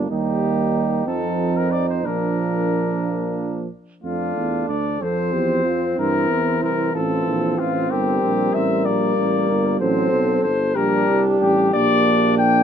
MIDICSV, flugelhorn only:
0, 0, Header, 1, 2, 480
1, 0, Start_track
1, 0, Key_signature, -2, "major"
1, 0, Tempo, 652884
1, 72, Time_signature, 6, 3, 24, 8
1, 2971, Key_signature, -1, "major"
1, 4874, Tempo, 636943
1, 9398, End_track
2, 0, Start_track
2, 0, Title_t, "Flugelhorn"
2, 0, Program_c, 0, 56
2, 79, Note_on_c, 0, 63, 43
2, 773, Note_off_c, 0, 63, 0
2, 783, Note_on_c, 0, 63, 39
2, 1505, Note_on_c, 0, 62, 41
2, 1516, Note_off_c, 0, 63, 0
2, 2730, Note_off_c, 0, 62, 0
2, 2967, Note_on_c, 0, 62, 37
2, 3686, Note_on_c, 0, 60, 43
2, 3697, Note_off_c, 0, 62, 0
2, 5115, Note_off_c, 0, 60, 0
2, 5119, Note_on_c, 0, 60, 47
2, 6562, Note_on_c, 0, 58, 43
2, 6574, Note_off_c, 0, 60, 0
2, 7266, Note_off_c, 0, 58, 0
2, 7270, Note_on_c, 0, 60, 53
2, 7762, Note_off_c, 0, 60, 0
2, 7976, Note_on_c, 0, 62, 51
2, 8685, Note_off_c, 0, 62, 0
2, 8721, Note_on_c, 0, 62, 55
2, 9398, Note_off_c, 0, 62, 0
2, 9398, End_track
0, 0, End_of_file